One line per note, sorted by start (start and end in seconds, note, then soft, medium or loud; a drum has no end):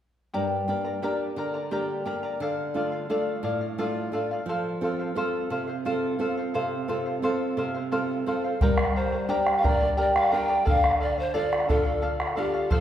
0.34 1.01 G2 soft
0.34 0.68 G4 medium
0.34 0.67 A#4 medium
0.34 0.68 D5 medium
0.34 0.67 G5 medium
0.34 0.68 A#5 medium
0.68 1.01 A#3 soft
0.68 1.02 D4 soft
0.68 1.02 G4 soft
0.68 0.85 A#4 soft
0.68 0.85 D5 soft
0.68 0.85 G5 soft
0.68 0.83 A#5 soft
0.85 1.02 A#4 soft
0.85 1.02 D5 soft
0.85 1.02 A#5 soft
1.02 1.58 A#3 soft
1.02 1.58 D4 soft
1.02 1.37 G4 medium
1.02 1.58 G4 soft
1.02 1.37 A#4 medium
1.02 1.37 D5 medium
1.02 1.36 G5 medium
1.02 1.37 A#5 medium
1.36 2.04 D3 soft
1.36 1.54 A#4 medium
1.36 1.54 D5 medium
1.36 1.54 G5 medium
1.36 1.53 A#5 medium
1.54 1.71 A#4 soft
1.54 1.71 D5 soft
1.54 1.72 A#5 soft
1.71 2.04 A#3 soft
1.71 2.04 D4 soft
1.71 2.06 G4 medium
1.71 2.05 G4 soft
1.71 2.05 A#4 medium
1.71 2.05 D5 medium
1.71 2.04 G5 medium
1.71 2.06 A#5 medium
2.05 2.33 A#3 soft
2.05 2.33 D4 soft
2.05 2.34 G4 soft
2.05 2.23 A#4 medium
2.05 2.23 D5 medium
2.05 2.23 G5 soft
2.05 2.22 A#5 medium
2.23 2.41 A#4 soft
2.23 2.41 D5 soft
2.23 2.40 A#5 medium
2.40 3.07 D3 medium
2.40 2.74 A4 medium
2.40 2.75 D5 medium
2.40 2.76 F5 medium
2.74 3.08 A3 soft
2.74 3.09 D4 soft
2.74 3.09 F4 soft
2.74 2.93 A4 soft
2.74 2.92 D5 soft
2.74 2.91 F5 soft
2.92 3.09 D5 soft
2.92 3.09 F5 soft
3.09 3.65 A3 soft
3.09 3.65 D4 soft
3.09 3.65 F4 soft
3.09 3.42 A4 medium
3.09 3.43 D5 medium
3.09 3.43 F5 medium
3.43 4.10 A2 medium
3.43 3.61 A4 medium
3.43 3.61 D5 medium
3.43 3.60 F5 medium
3.61 3.78 D5 soft
3.61 3.78 F5 soft
3.78 4.11 A3 soft
3.78 4.11 D4 soft
3.78 4.12 F4 soft
3.78 4.12 A4 medium
3.78 4.12 D5 medium
3.78 4.13 F5 medium
4.12 4.40 A3 soft
4.12 4.40 D4 soft
4.12 4.41 F4 soft
4.12 4.30 A4 medium
4.12 4.31 D5 medium
4.12 4.30 F5 medium
4.31 4.49 D5 soft
4.31 4.48 F5 medium
4.46 5.13 F3 medium
4.46 4.82 A4 medium
4.46 4.82 C5 medium
4.50 4.83 F5 medium
4.81 5.14 C4 soft
4.81 5.15 F4 soft
4.81 5.15 A4 soft
4.81 5.00 A4 soft
4.81 4.99 C5 soft
4.81 4.98 F5 soft
4.99 5.16 C5 soft
4.99 5.16 F5 soft
5.15 5.71 C4 soft
5.15 5.71 F4 soft
5.15 5.71 A4 soft
5.15 5.49 A4 medium
5.15 5.50 C5 medium
5.15 5.51 F5 medium
5.50 6.17 C3 medium
5.50 5.68 A4 medium
5.50 5.67 C5 medium
5.50 5.66 F5 medium
5.68 5.85 C5 soft
5.68 5.85 F5 soft
5.85 6.18 C4 soft
5.85 6.18 F4 soft
5.85 6.19 A4 medium
5.85 6.18 A4 soft
5.85 6.19 C5 medium
5.85 6.20 F5 medium
6.19 6.74 C4 soft
6.19 6.74 F4 soft
6.19 6.75 A4 soft
6.19 6.37 A4 medium
6.19 6.37 C5 medium
6.19 6.36 F5 medium
6.37 6.53 C5 soft
6.37 6.54 F5 soft
6.54 7.21 C3 medium
6.54 6.87 A4 medium
6.54 6.88 C5 medium
6.54 6.88 F5 medium
6.88 7.21 C4 soft
6.88 7.22 F4 soft
6.88 7.05 A4 soft
6.88 7.22 A4 soft
6.88 7.05 C5 soft
6.88 7.05 F5 medium
7.06 7.23 C5 soft
7.06 7.23 F5 soft
7.22 7.77 C4 soft
7.22 7.78 F4 soft
7.22 7.56 A4 medium
7.22 7.78 A4 soft
7.22 7.57 C5 medium
7.22 7.57 F5 medium
7.57 8.24 C3 medium
7.57 7.74 A4 medium
7.57 7.74 C5 medium
7.57 7.73 F5 medium
7.74 7.91 C5 soft
7.74 7.91 F5 soft
7.92 8.25 C4 soft
7.92 8.26 F4 soft
7.92 8.26 A4 medium
7.92 8.26 A4 soft
7.92 8.26 C5 medium
7.92 8.26 F5 medium
8.26 8.54 C4 soft
8.26 8.54 F4 soft
8.26 8.44 A4 medium
8.26 8.54 A4 soft
8.26 8.63 A4 medium
8.26 8.44 C5 medium
8.26 8.43 F5 medium
8.44 8.61 C5 soft
8.44 8.61 F5 soft
8.61 10.62 G3 medium
8.61 8.95 G4 medium
8.61 8.95 A#4 medium
8.61 8.96 D5 medium
8.61 8.95 G5 medium
8.61 8.96 A#5 medium
8.61 bombo low medium
8.78 bombo rim medium
8.96 9.13 A#4 soft
8.96 9.53 C5 medium
8.96 9.12 D5 soft
8.96 9.12 G5 soft
8.96 9.11 A#5 soft
9.12 9.28 A#4 soft
9.12 9.28 D5 soft
9.12 9.28 A#5 soft
9.29 9.63 D4 soft
9.29 9.63 G4 medium
9.29 9.63 G4 soft
9.29 9.62 A#4 medium
9.29 9.63 A#4 soft
9.29 9.63 D5 medium
9.29 9.62 G5 medium
9.29 9.64 A#5 medium
9.47 bombo rim soft
9.57 9.68 F5 medium
9.63 10.30 D4 soft
9.63 10.30 G4 soft
9.63 9.81 A#4 medium
9.63 10.30 A#4 soft
9.63 9.81 D5 medium
9.63 9.99 D5 medium
9.63 9.80 G5 medium
9.63 9.80 A#5 medium
9.63 bombo low medium
9.81 9.97 A#4 soft
9.81 9.97 D5 soft
9.81 9.97 A#5 soft
9.97 10.32 G4 medium
9.97 10.30 A#4 medium
9.97 10.31 D5 medium
9.97 10.15 D5 medium
9.97 10.30 G5 medium
9.97 10.31 A#5 medium
10.16 10.35 F5 medium
10.16 bombo rim medium
10.31 10.65 D4 soft
10.31 10.66 G4 soft
10.31 10.49 A#4 medium
10.31 10.66 A#4 soft
10.31 10.48 D5 medium
10.31 10.48 G5 medium
10.31 10.67 G5 medium
10.31 10.47 A#5 medium
10.48 10.64 A#4 soft
10.48 10.64 D5 soft
10.48 10.66 A#5 soft
10.48 bombo rim soft
10.65 12.68 D3 medium
10.65 10.99 A4 medium
10.65 10.99 D5 medium
10.65 11.00 F5 medium
10.65 11.03 F5 loud
10.65 bombo low medium
10.84 bombo rim soft
11.00 11.17 A4 soft
11.00 11.18 D5 soft
11.00 11.21 D5 medium
11.00 11.16 F5 soft
11.17 11.35 C5 medium
11.17 11.33 D5 soft
11.17 11.33 F5 soft
11.34 11.68 D4 soft
11.34 11.68 F4 soft
11.34 11.67 A4 medium
11.34 11.69 A4 soft
11.34 11.68 D5 medium
11.34 11.67 D5 medium
11.34 11.69 F5 medium
11.53 bombo rim soft
11.69 12.35 D4 soft
11.69 12.35 F4 soft
11.69 11.86 A4 medium
11.69 12.12 A4 medium
11.69 12.36 A4 soft
11.69 11.85 D5 medium
11.69 11.84 F5 medium
11.69 bombo low medium
11.85 12.01 D5 soft
11.85 12.02 F5 soft
12.02 12.35 A4 medium
12.02 12.36 D5 medium
12.02 12.36 F5 medium
12.20 bombo rim medium
12.36 12.70 D4 soft
12.36 12.71 F4 soft
12.36 12.74 G4 medium
12.36 12.54 A4 medium
12.36 12.71 A4 soft
12.36 12.54 D5 medium
12.36 12.53 F5 medium
12.54 12.71 D5 soft
12.54 12.71 F5 medium
12.54 bombo rim soft
12.70 12.80 F3 medium
12.70 12.80 A4 medium
12.70 12.80 C5 medium
12.70 12.80 F5 medium
12.70 bombo low medium